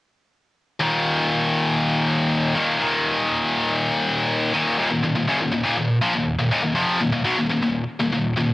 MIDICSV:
0, 0, Header, 1, 2, 480
1, 0, Start_track
1, 0, Tempo, 496689
1, 778, Time_signature, 4, 2, 24, 8
1, 8249, End_track
2, 0, Start_track
2, 0, Title_t, "Distorted electric guitar"
2, 0, Program_c, 0, 30
2, 768, Note_on_c, 0, 39, 76
2, 786, Note_on_c, 0, 46, 73
2, 794, Note_on_c, 0, 51, 79
2, 2452, Note_off_c, 0, 46, 0
2, 2461, Note_off_c, 0, 51, 0
2, 2465, Note_on_c, 0, 51, 70
2, 2476, Note_on_c, 0, 46, 72
2, 2484, Note_off_c, 0, 39, 0
2, 2487, Note_on_c, 0, 39, 61
2, 2695, Note_off_c, 0, 46, 0
2, 2701, Note_off_c, 0, 39, 0
2, 2705, Note_on_c, 0, 39, 79
2, 2718, Note_on_c, 0, 46, 80
2, 2729, Note_off_c, 0, 51, 0
2, 2733, Note_on_c, 0, 51, 92
2, 4366, Note_off_c, 0, 51, 0
2, 4370, Note_off_c, 0, 39, 0
2, 4377, Note_off_c, 0, 46, 0
2, 4378, Note_on_c, 0, 51, 74
2, 4391, Note_on_c, 0, 46, 66
2, 4401, Note_on_c, 0, 39, 55
2, 4606, Note_off_c, 0, 51, 0
2, 4612, Note_off_c, 0, 39, 0
2, 4613, Note_off_c, 0, 46, 0
2, 4624, Note_on_c, 0, 39, 84
2, 4630, Note_on_c, 0, 46, 93
2, 4736, Note_off_c, 0, 39, 0
2, 4739, Note_off_c, 0, 46, 0
2, 4749, Note_on_c, 0, 39, 65
2, 4751, Note_on_c, 0, 46, 70
2, 4854, Note_off_c, 0, 39, 0
2, 4861, Note_off_c, 0, 46, 0
2, 4865, Note_on_c, 0, 39, 64
2, 4872, Note_on_c, 0, 46, 65
2, 4972, Note_off_c, 0, 39, 0
2, 4977, Note_off_c, 0, 46, 0
2, 4984, Note_on_c, 0, 39, 67
2, 4988, Note_on_c, 0, 46, 71
2, 5098, Note_off_c, 0, 39, 0
2, 5102, Note_on_c, 0, 42, 94
2, 5105, Note_off_c, 0, 46, 0
2, 5108, Note_on_c, 0, 49, 98
2, 5215, Note_off_c, 0, 42, 0
2, 5218, Note_off_c, 0, 49, 0
2, 5223, Note_on_c, 0, 39, 59
2, 5226, Note_on_c, 0, 46, 67
2, 5323, Note_off_c, 0, 39, 0
2, 5330, Note_off_c, 0, 46, 0
2, 5334, Note_on_c, 0, 39, 60
2, 5342, Note_on_c, 0, 46, 62
2, 5436, Note_off_c, 0, 39, 0
2, 5444, Note_off_c, 0, 46, 0
2, 5448, Note_on_c, 0, 39, 77
2, 5456, Note_on_c, 0, 46, 94
2, 5566, Note_off_c, 0, 39, 0
2, 5568, Note_off_c, 0, 46, 0
2, 5577, Note_on_c, 0, 39, 68
2, 5580, Note_on_c, 0, 46, 72
2, 5771, Note_off_c, 0, 39, 0
2, 5773, Note_off_c, 0, 46, 0
2, 5813, Note_on_c, 0, 46, 94
2, 5818, Note_on_c, 0, 53, 104
2, 5922, Note_off_c, 0, 46, 0
2, 5932, Note_off_c, 0, 53, 0
2, 5933, Note_on_c, 0, 46, 69
2, 5934, Note_on_c, 0, 39, 65
2, 6129, Note_off_c, 0, 39, 0
2, 6129, Note_off_c, 0, 46, 0
2, 6172, Note_on_c, 0, 39, 62
2, 6178, Note_on_c, 0, 46, 66
2, 6282, Note_off_c, 0, 39, 0
2, 6287, Note_off_c, 0, 46, 0
2, 6293, Note_on_c, 0, 39, 80
2, 6299, Note_on_c, 0, 46, 94
2, 6394, Note_off_c, 0, 39, 0
2, 6399, Note_off_c, 0, 46, 0
2, 6405, Note_on_c, 0, 39, 61
2, 6411, Note_on_c, 0, 46, 68
2, 6518, Note_off_c, 0, 39, 0
2, 6519, Note_off_c, 0, 46, 0
2, 6522, Note_on_c, 0, 41, 87
2, 6523, Note_on_c, 0, 48, 90
2, 6528, Note_on_c, 0, 53, 98
2, 6760, Note_off_c, 0, 41, 0
2, 6764, Note_off_c, 0, 48, 0
2, 6764, Note_on_c, 0, 39, 64
2, 6766, Note_off_c, 0, 53, 0
2, 6769, Note_on_c, 0, 46, 68
2, 6873, Note_off_c, 0, 39, 0
2, 6877, Note_off_c, 0, 46, 0
2, 6884, Note_on_c, 0, 39, 65
2, 6889, Note_on_c, 0, 46, 71
2, 6998, Note_off_c, 0, 46, 0
2, 7002, Note_on_c, 0, 47, 90
2, 7007, Note_on_c, 0, 54, 92
2, 7012, Note_off_c, 0, 39, 0
2, 7123, Note_off_c, 0, 47, 0
2, 7126, Note_off_c, 0, 54, 0
2, 7130, Note_on_c, 0, 39, 66
2, 7130, Note_on_c, 0, 46, 68
2, 7234, Note_off_c, 0, 39, 0
2, 7240, Note_off_c, 0, 46, 0
2, 7246, Note_on_c, 0, 39, 56
2, 7252, Note_on_c, 0, 46, 66
2, 7354, Note_off_c, 0, 39, 0
2, 7358, Note_off_c, 0, 46, 0
2, 7366, Note_on_c, 0, 39, 60
2, 7370, Note_on_c, 0, 46, 68
2, 7563, Note_off_c, 0, 39, 0
2, 7565, Note_off_c, 0, 46, 0
2, 7728, Note_on_c, 0, 39, 68
2, 7733, Note_on_c, 0, 46, 75
2, 7838, Note_off_c, 0, 39, 0
2, 7838, Note_off_c, 0, 46, 0
2, 7849, Note_on_c, 0, 39, 63
2, 7850, Note_on_c, 0, 46, 70
2, 8044, Note_off_c, 0, 39, 0
2, 8045, Note_off_c, 0, 46, 0
2, 8080, Note_on_c, 0, 39, 65
2, 8085, Note_on_c, 0, 46, 69
2, 8249, Note_off_c, 0, 39, 0
2, 8249, Note_off_c, 0, 46, 0
2, 8249, End_track
0, 0, End_of_file